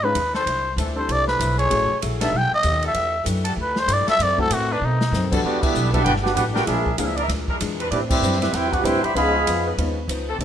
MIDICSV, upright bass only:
0, 0, Header, 1, 3, 480
1, 0, Start_track
1, 0, Key_signature, 1, "minor"
1, 0, Tempo, 310559
1, 719, Time_signature, 4, 2, 24, 8
1, 16144, End_track
2, 0, Start_track
2, 0, Title_t, "Upright bass"
2, 0, Program_c, 0, 32
2, 0, Note_on_c, 0, 44, 86
2, 215, Note_off_c, 0, 44, 0
2, 228, Note_on_c, 0, 39, 96
2, 699, Note_off_c, 0, 39, 0
2, 714, Note_on_c, 0, 36, 80
2, 1172, Note_off_c, 0, 36, 0
2, 1182, Note_on_c, 0, 38, 100
2, 1656, Note_off_c, 0, 38, 0
2, 1675, Note_on_c, 0, 36, 95
2, 2143, Note_off_c, 0, 36, 0
2, 2160, Note_on_c, 0, 35, 106
2, 2626, Note_off_c, 0, 35, 0
2, 2656, Note_on_c, 0, 33, 91
2, 2923, Note_off_c, 0, 33, 0
2, 3137, Note_on_c, 0, 34, 98
2, 3575, Note_off_c, 0, 34, 0
2, 3584, Note_on_c, 0, 35, 103
2, 3866, Note_off_c, 0, 35, 0
2, 4077, Note_on_c, 0, 39, 105
2, 4545, Note_off_c, 0, 39, 0
2, 4553, Note_on_c, 0, 40, 88
2, 5023, Note_off_c, 0, 40, 0
2, 5035, Note_on_c, 0, 42, 94
2, 5499, Note_off_c, 0, 42, 0
2, 5508, Note_on_c, 0, 38, 101
2, 5981, Note_off_c, 0, 38, 0
2, 5990, Note_on_c, 0, 43, 103
2, 6269, Note_off_c, 0, 43, 0
2, 6474, Note_on_c, 0, 42, 84
2, 6944, Note_off_c, 0, 42, 0
2, 6957, Note_on_c, 0, 45, 100
2, 7425, Note_off_c, 0, 45, 0
2, 7437, Note_on_c, 0, 47, 99
2, 7902, Note_off_c, 0, 47, 0
2, 7911, Note_on_c, 0, 42, 109
2, 8382, Note_off_c, 0, 42, 0
2, 8404, Note_on_c, 0, 40, 89
2, 8868, Note_off_c, 0, 40, 0
2, 8878, Note_on_c, 0, 35, 102
2, 9345, Note_off_c, 0, 35, 0
2, 9358, Note_on_c, 0, 31, 91
2, 9825, Note_off_c, 0, 31, 0
2, 9842, Note_on_c, 0, 33, 107
2, 10304, Note_off_c, 0, 33, 0
2, 10313, Note_on_c, 0, 34, 94
2, 10783, Note_off_c, 0, 34, 0
2, 10793, Note_on_c, 0, 37, 103
2, 11249, Note_off_c, 0, 37, 0
2, 11258, Note_on_c, 0, 38, 98
2, 11735, Note_off_c, 0, 38, 0
2, 11759, Note_on_c, 0, 40, 113
2, 12219, Note_off_c, 0, 40, 0
2, 12228, Note_on_c, 0, 45, 96
2, 12691, Note_off_c, 0, 45, 0
2, 12701, Note_on_c, 0, 42, 100
2, 13172, Note_off_c, 0, 42, 0
2, 13181, Note_on_c, 0, 40, 94
2, 13650, Note_off_c, 0, 40, 0
2, 13659, Note_on_c, 0, 38, 107
2, 13942, Note_off_c, 0, 38, 0
2, 14140, Note_on_c, 0, 37, 88
2, 14615, Note_off_c, 0, 37, 0
2, 14633, Note_on_c, 0, 41, 93
2, 15102, Note_off_c, 0, 41, 0
2, 15113, Note_on_c, 0, 39, 90
2, 15568, Note_off_c, 0, 39, 0
2, 15577, Note_on_c, 0, 37, 94
2, 16043, Note_off_c, 0, 37, 0
2, 16053, Note_on_c, 0, 36, 95
2, 16144, Note_off_c, 0, 36, 0
2, 16144, End_track
3, 0, Start_track
3, 0, Title_t, "Muted upright bass strokes"
3, 2963, Note_on_c, 9, 29, 42
3, 3118, Note_off_c, 9, 29, 0
3, 3885, Note_on_c, 9, 29, 45
3, 4039, Note_off_c, 9, 29, 0
3, 6304, Note_on_c, 9, 29, 40
3, 6459, Note_off_c, 9, 29, 0
3, 13970, Note_on_c, 9, 29, 38
3, 14125, Note_off_c, 9, 29, 0
3, 16144, End_track
0, 0, End_of_file